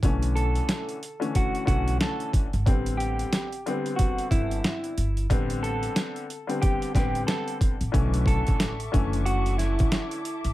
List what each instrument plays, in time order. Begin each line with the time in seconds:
0.03 upright bass B1, upright piano D3 E3 A3 C#4, kick, closed hi-hat
0.23 closed hi-hat
0.35 clean electric guitar A4, closed hi-hat
0.55 closed hi-hat
0.69 snare, closed hi-hat
0.89 closed hi-hat
1.03 closed hi-hat
1.20 upright piano D3 E3 A3 C#4, closed hi-hat
1.35 clean electric guitar F#4, kick, closed hi-hat
1.55 closed hi-hat
1.66 upright bass B1, upright piano D3 E3 A3 C#4, clean electric guitar F#4, kick, closed hi-hat
1.88 closed hi-hat
2.01 clean electric guitar A4, snare, closed hi-hat
2.20 closed hi-hat
2.33 kick, closed hi-hat
2.53 upright bass G1, closed hi-hat
2.66 upright bass A1, upright piano D3 G3 B3 C4, kick, closed hi-hat
2.86 closed hi-hat
2.97 clean electric guitar G4, closed hi-hat
3.19 closed hi-hat
3.33 snare, closed hi-hat
3.52 closed hi-hat
3.66 upright piano D3 G3 B3 C4, closed hi-hat
3.86 closed hi-hat
3.96 clean electric guitar F#4, kick, closed hi-hat
4.18 closed hi-hat
4.31 upright bass G1, clean electric guitar E4, kick, closed hi-hat
4.51 closed hi-hat
4.64 snare, closed hi-hat
4.84 closed hi-hat
4.98 upright bass G1, closed hi-hat
5.17 closed hi-hat
5.30 upright bass A1, upright piano D3 G3 B3 C4, kick, closed hi-hat
5.50 closed hi-hat
5.63 clean electric guitar A4, closed hi-hat
5.83 closed hi-hat
5.96 snare, closed hi-hat
6.16 closed hi-hat
6.30 closed hi-hat
6.47 upright piano D3 G3 B3 C4, closed hi-hat
6.62 clean electric guitar G4, kick, closed hi-hat
6.82 closed hi-hat
6.95 upright bass A1, upright piano D3 G3 B3 C4, clean electric guitar G4, kick, snare, closed hi-hat
7.15 closed hi-hat
7.27 clean electric guitar A4, snare, closed hi-hat
7.48 closed hi-hat
7.61 kick, closed hi-hat
7.81 upright bass A1, closed hi-hat
7.92 upright bass B1, upright piano D3 E3 A3 C#4, string section A4 E5 C#6 D6, kick, closed hi-hat
8.14 closed hi-hat
8.26 clean electric guitar A4, kick, closed hi-hat
8.47 upright bass A1, kick, closed hi-hat
8.60 snare, closed hi-hat
8.80 closed hi-hat
8.92 upright bass F#1, upright piano D3 E3 A3 C#4, kick, closed hi-hat
9.13 closed hi-hat
9.25 clean electric guitar F#4, closed hi-hat
9.46 closed hi-hat
9.58 clean electric guitar E4, snare, closed hi-hat
9.79 upright bass A1, kick, closed hi-hat
9.92 snare, closed hi-hat
10.11 closed hi-hat
10.25 closed hi-hat
10.44 upright bass A1, closed hi-hat